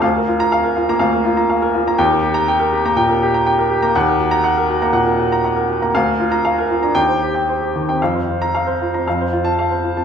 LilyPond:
<<
  \new Staff \with { instrumentName = "Grand piano" } { \time 4/4 \key bes \major \tempo 4 = 120 << { r8. bes''8 r2 r8. | r8. bes''8 r2 r8. | r8. bes''8 r2 r8. | r8. bes''8 r8. g''8 r4. |
r8. bes''8 r4. a''8 r8. | } \\ { f''16 bes'16 f'8 f''16 bes'16 f'16 bes''16 f''16 bes'16 f'16 bes''16 f''16 bes'16 f'16 bes''16 | g''16 bes'16 g'8 g''16 bes'16 g'16 bes''16 g''16 bes'16 g'16 bes''16 g''16 bes'16 g'16 bes''16 | ges''16 bes'16 ges'8 ges''16 bes'16 ges'16 bes''16 ges''16 bes'16 ges'16 bes''16 ges''16 bes'16 ges'16 bes''16 | f''16 bes'16 f'8 f''16 bes'16 f'16 bes''16 r16 c''16 g'16 g''16 c''16 g'16 ees16 g''16 |
f''16 c''16 f'8 f''16 c''16 f'16 bes''16 f''16 c''16 f'8 f''16 c''16 f'16 a''16 | } >> }
  \new Staff \with { instrumentName = "Grand piano" } { \clef bass \time 4/4 \key bes \major d,4.~ d,16 bes16 d,4.~ d,16 bes16 | ees,4.~ ees,16 bes16 bes,8 r4 r16 bes16 | ees,4.~ ees,16 bes16 bes,8 r4 r16 bes16 | d,4.~ d,16 d'16 ees,4.~ ees,16 c'16 |
f,4.~ f,16 c'16 f,4.~ f,16 c'16 | }
>>